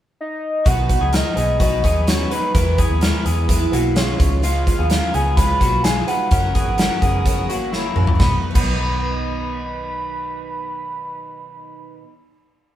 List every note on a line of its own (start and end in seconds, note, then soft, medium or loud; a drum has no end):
0.21 0.69 D#5 loud
0.65 0.96 B1 medium
0.65 0.89 B2 medium
0.65 0.90 D#3 medium
0.65 0.90 F#3 medium
0.65 1.00 B3 medium
0.65 0.89 B3 medium
0.65 0.88 D#4 medium
0.65 0.99 F#4 medium
0.65 0.88 B4 medium
0.65 1.17 F#5 loud
0.65 kick loud
0.65 closed hi-hat medium
0.89 1.11 F#3 soft
0.89 1.12 B3 soft
0.89 1.13 D#4 soft
0.89 1.13 B4 soft
0.89 kick medium
0.89 closed hi-hat medium
1.01 1.21 C#2 medium
1.01 1.13 B3 medium
1.01 1.13 G#4 medium
1.13 1.36 B3 soft
1.13 1.37 D#4 medium
1.13 1.35 D#4 medium
1.13 1.36 A#4 medium
1.13 1.34 B4 medium
1.13 1.61 D#5 loud
1.13 snare medium
1.13 closed hi-hat medium
1.36 1.84 B1 medium
1.36 1.59 F#3 soft
1.36 1.59 B3 medium
1.36 1.59 B3 soft
1.36 1.60 D#4 soft
1.36 1.59 G#4 medium
1.36 1.60 B4 soft
1.36 closed hi-hat medium
1.59 1.83 B2 medium
1.59 1.84 D#3 medium
1.59 1.84 F#3 medium
1.59 1.83 B3 medium
1.59 1.84 B3 medium
1.59 1.82 D#4 medium
1.59 1.84 F#4 medium
1.59 1.81 B4 medium
1.59 2.06 D#5 loud
1.59 kick medium
1.59 closed hi-hat medium
1.83 2.24 D#2 medium
1.83 2.06 F#3 soft
1.83 2.07 B3 soft
1.83 2.07 B3 medium
1.83 2.07 D#4 soft
1.83 2.07 G#4 medium
1.83 2.07 B4 medium
1.83 kick medium
1.83 closed hi-hat medium
2.07 2.31 F#3 medium
2.07 2.31 B3 medium
2.07 2.31 D#4 medium
2.07 2.31 F#4 medium
2.07 2.29 B4 medium
2.07 2.34 C#5 medium
2.07 snare loud
2.07 closed hi-hat medium
2.30 2.54 F#3 soft
2.30 2.54 B3 soft
2.30 2.55 D#4 medium
2.30 2.54 B4 medium
2.30 2.79 B4 medium
2.30 closed hi-hat medium
2.55 2.85 E2 medium
2.55 2.78 E3 medium
2.55 2.78 G#3 medium
2.55 2.79 B3 medium
2.55 2.79 E4 medium
2.55 2.78 E4 medium
2.55 2.78 A#4 medium
2.55 2.76 B4 medium
2.55 kick loud
2.55 closed hi-hat medium
2.78 3.03 B3 medium
2.78 3.01 B3 soft
2.78 3.02 E4 soft
2.78 3.02 G#4 medium
2.78 3.02 B4 medium
2.78 kick medium
2.78 closed hi-hat medium
2.90 3.10 D#2 medium
3.01 3.25 G#3 medium
3.01 3.26 B3 medium
3.01 3.25 E4 medium
3.01 3.26 E4 medium
3.01 3.26 A#4 medium
3.01 3.23 B4 medium
3.01 snare medium
3.01 closed hi-hat medium
3.25 3.66 E2 medium
3.25 3.71 B3 medium
3.25 3.49 B3 soft
3.25 3.49 E4 soft
3.25 3.70 G#4 medium
3.25 3.49 B4 soft
3.25 closed hi-hat medium
3.49 3.73 E3 medium
3.49 3.73 G#3 medium
3.49 3.73 B3 medium
3.49 3.72 E4 medium
3.49 3.70 B4 medium
3.49 kick medium
3.49 closed hi-hat medium
3.72 4.13 B1 medium
3.72 3.97 A#3 medium
3.72 3.95 B3 medium
3.72 3.96 E4 medium
3.72 3.96 F#4 medium
3.72 3.96 B4 medium
3.72 closed hi-hat medium
3.95 4.19 G#3 soft
3.95 4.41 G#3 medium
3.95 4.20 B3 medium
3.95 4.20 E4 medium
3.95 4.41 F4 medium
3.95 4.17 B4 medium
3.95 4.45 C#5 medium
3.95 snare loud
3.95 closed hi-hat medium
4.18 4.70 C#2 medium
4.18 4.42 B3 soft
4.18 4.43 F4 soft
4.18 4.43 B4 medium
4.18 kick loud
4.18 closed hi-hat medium
4.42 4.66 C#3 medium
4.42 4.67 G#3 medium
4.42 4.77 G#3 medium
4.42 4.67 B3 medium
4.42 4.77 F4 medium
4.42 4.66 F4 medium
4.42 4.65 B4 medium
4.42 4.67 F5 medium
4.42 closed hi-hat medium
4.66 4.89 B3 soft
4.66 4.90 F4 soft
4.66 4.90 B4 soft
4.66 5.16 F5 loud
4.66 kick medium
4.66 closed hi-hat medium
4.79 4.99 D#2 medium
4.79 4.91 B3 medium
4.79 4.90 G#4 medium
4.89 5.14 G#3 soft
4.89 5.14 B3 soft
4.89 5.14 C#4 medium
4.89 5.13 F4 medium
4.89 5.14 A#4 medium
4.89 5.12 B4 medium
4.89 snare medium
4.89 closed hi-hat medium
5.13 5.54 C#2 medium
5.13 5.37 B3 medium
5.13 5.36 B3 soft
5.13 5.37 F4 soft
5.13 5.38 G#4 medium
5.13 5.37 B4 soft
5.13 5.36 G#5 loud
5.13 closed hi-hat medium
5.37 5.61 C#3 medium
5.37 5.61 G#3 medium
5.37 5.61 B3 medium
5.37 5.60 F4 medium
5.37 5.59 B4 medium
5.37 5.85 B5 loud
5.37 kick medium
5.37 closed hi-hat medium
5.60 6.01 B1 medium
5.60 5.85 A#3 medium
5.60 5.84 B3 soft
5.60 5.85 F4 medium
5.60 5.84 F#4 medium
5.60 5.84 B4 medium
5.60 kick medium
5.60 closed hi-hat medium
5.84 6.08 G#3 medium
5.84 6.08 B3 medium
5.84 6.08 F4 medium
5.84 6.06 B4 medium
5.84 6.09 G#5 loud
5.84 snare loud
5.84 closed hi-hat medium
6.07 6.32 B3 soft
6.07 6.32 D#4 medium
6.07 6.32 F4 soft
6.07 6.31 B4 medium
6.07 7.73 F#5 loud
6.07 closed hi-hat medium
6.31 6.62 F#1 medium
6.31 6.55 F#3 medium
6.31 6.55 C#4 medium
6.31 6.55 F#4 medium
6.31 6.54 A#4 medium
6.31 kick loud
6.31 closed hi-hat medium
6.55 6.79 B3 medium
6.55 6.78 C#4 soft
6.55 6.79 F#4 soft
6.55 6.78 G#4 medium
6.55 6.79 A#4 medium
6.55 kick medium
6.55 closed hi-hat medium
6.68 6.87 G#1 medium
6.78 7.02 F#3 medium
6.78 7.02 C#4 medium
6.78 7.03 C#4 medium
6.78 7.02 F#4 medium
6.78 7.01 A#4 medium
6.78 snare loud
6.78 closed hi-hat medium
7.02 7.50 F#1 medium
7.02 7.47 B3 medium
7.02 7.25 C#4 soft
7.02 7.26 F#4 medium
7.02 7.46 G#4 medium
7.02 7.26 A#4 medium
7.02 kick medium
7.02 closed hi-hat medium
7.25 7.49 F#3 medium
7.25 7.49 C#4 medium
7.25 7.49 F#4 medium
7.25 7.48 A#4 medium
7.25 kick medium
7.25 closed hi-hat medium
7.49 7.90 G#1 medium
7.49 7.72 A#3 medium
7.49 7.72 C#4 soft
7.49 7.72 F#4 medium
7.49 7.73 F#4 medium
7.49 7.73 A#4 medium
7.49 closed hi-hat medium
7.72 7.96 F#3 medium
7.72 8.17 A#3 medium
7.72 7.97 C#4 medium
7.72 8.17 E4 medium
7.72 7.96 F#4 medium
7.72 7.95 A#4 medium
7.72 snare medium
7.96 8.17 A#1 medium
7.96 8.21 C#4 soft
7.96 8.20 F#4 medium
7.96 8.20 A#4 medium
7.96 mid tom medium
8.07 floor tom medium
8.15 8.50 B2 medium
8.19 8.33 B1 medium
8.19 8.54 D#3 medium
8.19 8.57 F#3 medium
8.19 8.33 B3 medium
8.19 8.33 B5 medium
8.19 kick loud
8.19 snare medium
8.25 8.60 B3 medium
8.25 8.63 D#4 medium
8.30 8.66 B4 medium
8.51 12.01 B2 medium
8.51 12.04 D#3 medium
8.55 11.96 B1 medium
8.55 12.08 F#3 medium
8.55 9.57 B3 medium
8.55 11.95 B5 medium
8.55 kick loud
8.55 crash medium
8.61 12.11 B3 medium
8.61 12.13 D#4 medium
8.66 12.16 B4 medium